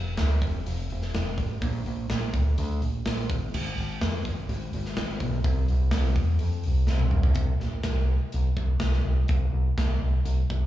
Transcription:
Already playing: F1
0.17 D2, snare, open hi-hat
0.41 F1, kick, open hi-hat
0.66 F1, open hi-hat
0.90 F1, open hi-hat
1.02 snare
1.14 F1, snare, open hi-hat
1.38 A1, kick, open hi-hat
1.62 A#1, kick, open hi-hat
1.86 A#1, open hi-hat
2.10 A#1, snare, open hi-hat
2.34 D2, kick, open hi-hat
2.58 D2, open hi-hat
2.82 A#1, open hi-hat
3.06 A#1, snare, open hi-hat
3.30 G#1, kick, open hi-hat
3.54 G#1, crash
3.77 G#1, open hi-hat
4.01 F2, snare, open hi-hat
4.25 G#1, kick, open hi-hat
4.49 G#1, open hi-hat
4.73 G#1, open hi-hat
4.85 snare
4.97 G#1, snare, open hi-hat
5.20 B1, kick, open hi-hat
5.44 C2, kick, open hi-hat
5.68 C2, open hi-hat
5.91 C2, snare, open hi-hat
6.15 E2, kick, open hi-hat
6.39 F2, open hi-hat
6.64 C2, open hi-hat
6.87 C2, snare
6.99 high tom
7.11 C2, mid tom
7.23 floor tom
7.35 C2, kick, closed hi-hat
7.60 A#1, snare
7.83 C2, kick, snare, closed hi-hat
8.32 C2, closed hi-hat
8.57 C2, kick
8.80 C2, snare, closed hi-hat
8.93 snare
9.05 C2
9.28 C2, kick, closed hi-hat
9.53 C2
9.77 C2, kick, snare, closed hi-hat
10.02 C2
10.25 C2, closed hi-hat
10.50 C2, kick

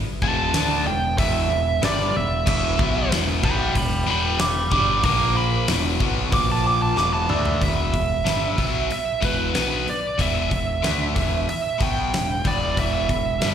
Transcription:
Already playing: E3 B3 E4
0.22 E1 E2 B2 E3 A5, kick
0.54 D2 D3 A3 D4, snare, open hi-hat
0.86 E1 E2 B2 G5
1.18 E1 E2 B2 E3 E5, kick, open hi-hat
1.50 E1 E2 B2
1.82 G1 G2 D3 G3 D5, snare, open hi-hat
2.14 E1 E2 B2 E5
2.46 E1 E2 B2 E3 E5, kick, crash
2.77 B1 B2 F#3 B3, kick
3.11 E1 E2 B2 E3, snare, open hi-hat
3.43 B1 B2 F#3 B3 G5 B5, kick
3.75 E1 E2 B2 G5 B5, kick, open hi-hat
4.06 E1 E2 B2 E3 G5
4.11 B5
4.39 E1 E2 B2 B5 D6, snare, open hi-hat
4.71 G1 G2 D3 G3 B5 D6, kick
5.03 A#1 A#2 F3 A#3 F4 C5 A#5 D6, kick, open hi-hat
5.37 B5
5.68 E1 E2 B2 E3 B3 F#4, snare, open hi-hat
5.99 B1 B2 F#3 B3, kick
6.32 A#1 A#2 F3 A#3 F4 C5 D6, kick, open hi-hat
6.52 A5
6.67 D6
6.82 A5
6.95 E1 E2 B2 E3 F#4 D6, snare
7.00 B3
7.13 A5
7.29 D2 D3 A3 D4 D5 E5, mid tom
7.45 floor tom
7.61 E1 E2 B2 E3 E5, kick, open hi-hat
7.93 E1 E2 B2, kick, open hi-hat
8.24 G1 G2 D3 G3, snare, open hi-hat
8.58 B1 B2 F#3 B3, kick, open hi-hat
8.89 E5, muted overdriven electric guitar stroke, muted picked electric bass stroke, open hi-hat
9.21 E1 E2 B2 E3 B4, kick, open hi-hat
9.54 B1 B2 F#3 B3, snare, open hi-hat
9.87 D5, muted picked electric bass stroke, muted overdriven electric guitar stroke, open hi-hat
10.18 E1 E2 B2 E3 E5, kick, open hi-hat
10.50 E1 E2 B2, kick, open hi-hat
10.83 D2 D3 A3 D4, snare, open hi-hat
11.14 E1 E2 B2 E3, kick, open hi-hat
11.49 E5, open hi-hat
11.78 B1 B2 F#3 B3, kick, open hi-hat
11.82 G5
12.13 E1 E2 B2, snare, open hi-hat
12.45 E1 E2 B2 E3 D5, kick, open hi-hat
12.77 E1 E2 B2 E3 E5, kick, open hi-hat
13.09 E1 E2 B2, kick, open hi-hat
13.41 G1 G2 D3 G3, snare, open hi-hat

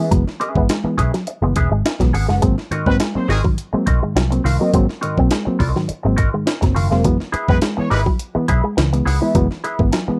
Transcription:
0.11 F#1 E3 F#3 G#3 B3, kick, closed hi-hat
0.27 snare
0.40 C#4 G#4 B4 E5, muted clean electric guitar stroke, closed hi-hat
0.55 G#1 E3 G#3 B3, kick
0.69 G#3, snare, closed hi-hat
0.84 E3 G#3 B3, muted picked electric bass stroke, muted clean electric guitar stroke
0.98 B1 C#4 G#4 B4 E5, muted clean electric guitar stroke, kick, closed hi-hat
1.14 F#3, muted clean electric guitar stroke, snare, closed hi-hat
1.27 muted clean electric guitar stroke, closed hi-hat
1.42 F#1 E3 G#3 B3, muted clean electric guitar stroke
1.56 E1 C#4 G#4 B4 E5, muted clean electric guitar stroke, kick, closed hi-hat
1.71 G#1 G#3, muted clean electric guitar stroke
1.85 muted clean electric guitar stroke, snare, closed hi-hat
2.00 B1 E3 F#3 G#3 B3, muted clean electric guitar stroke, kick, snare, closed hi-hat
2.13 G#1 C#4 G#4 B4 F#5, muted clean electric guitar stroke, open hi-hat
2.28 F#1 G#3 C#4 G#4 B4 F#5, snare
2.42 G#1 F#3 G#3 A#3 C4, kick, closed hi-hat
2.58 snare
2.71 G#2 D#3 C4 F#4 A#4 D#5, muted picked electric bass stroke, muted clean electric guitar stroke, closed hi-hat
2.86 G#2 F#3 A#3 C4 F#4 B4, kick
3.00 G#3, snare, closed hi-hat
3.15 F#3 A#3 C4 D#4 C5, muted clean electric guitar stroke, muted picked electric bass stroke
3.29 G#1 D#3 C4 F#4 G#4 A#4 D#5, muted clean electric guitar stroke, snare, open hi-hat
3.44 G#2 D#3 F#3, muted clean electric guitar stroke, kick
3.58 closed hi-hat
3.73 F#3 G#3 A#3 C4, muted clean electric guitar stroke, muted picked electric bass stroke
3.86 B1 C4 F#4 A#4 D#5, muted clean electric guitar stroke, kick, closed hi-hat
4.02 G#2 D#3 G#3, muted clean electric guitar stroke
4.15 C2 F#3, muted clean electric guitar stroke, snare, closed hi-hat
4.30 F#3 A#3 C4, muted clean electric guitar stroke, closed hi-hat
4.44 C2 G#2 D#3 C4 F#4 A#4 F5, snare, open hi-hat
4.59 F#3 A#3 C4 F#4 A#4 D#5
4.74 G#1 F#3 G#3 A#3 C4, kick, closed hi-hat
4.89 snare
5.01 G#2 D#3 C4 F#4 A#4 D#5, muted clean electric guitar stroke, closed hi-hat
5.18 B1 F#3 A#3 C4, kick
5.31 G#3, snare, closed hi-hat
5.45 F#3 A#3 C4, muted clean electric guitar stroke, muted picked electric bass stroke
5.59 C2 C4 F#4 A#4 D#5, muted clean electric guitar stroke, kick, open hi-hat
5.74 G#2 D#3 F#3, muted clean electric guitar stroke, snare
5.87 muted clean electric guitar stroke, muted picked electric bass stroke, closed hi-hat
6.03 G#1 F#3 G#3 A#3 C4, muted clean electric guitar stroke
6.16 C4 F#4 A#4 D#5, muted clean electric guitar stroke, kick, closed hi-hat
6.32 G#2 D#3 G#3, muted clean electric guitar stroke
6.46 muted clean electric guitar stroke, snare, closed hi-hat
6.61 F#1 F#3 A#3 C4, muted clean electric guitar stroke, kick, snare, closed hi-hat
6.75 F#1 G#2 D#3 C4 F#4 A#4 F5, muted clean electric guitar stroke, open hi-hat
6.90 F1 F#3 G#3 A#3 C4 F#4 A#4 F5, snare
7.04 F#1 E3 F#3 G#3 B3, kick, closed hi-hat
7.20 snare
7.32 E4 G#4 B4 E5, muted picked electric bass stroke, muted clean electric guitar stroke, closed hi-hat
7.48 F#2 E3 G#3 B3 E4 B4, kick
7.62 G#3, snare, closed hi-hat
7.77 E3 G#3 B3 E4 C#5, muted clean electric guitar stroke, muted picked electric bass stroke
7.90 G#1 G#3 E4 G#4 B4 E5, muted clean electric guitar stroke, snare, open hi-hat
8.06 F#3, muted clean electric guitar stroke, kick
8.19 closed hi-hat
8.35 E3 G#3 B3, muted clean electric guitar stroke, muted picked electric bass stroke
8.48 B1 E4 G#4 B4 E5, muted clean electric guitar stroke, kick, closed hi-hat
8.64 G#3, muted clean electric guitar stroke
8.77 C#2 E3, muted clean electric guitar stroke, snare, closed hi-hat
8.93 E3 G#3 B3, muted clean electric guitar stroke, closed hi-hat
9.05 C#2 E4 G#4 B4 F#5, snare, open hi-hat
9.21 E3 G#3 B3 E4 G#4 B4 E5
9.35 F#1 E3 F#3 G#3 B3, kick, closed hi-hat
9.51 snare
9.64 E4 G#4 B4 E5, muted clean electric guitar stroke, closed hi-hat
9.79 G#1 E3 G#3 B3, kick
9.93 F#3, snare, closed hi-hat
10.08 E3 G#3 B3, muted clean electric guitar stroke, muted picked electric bass stroke

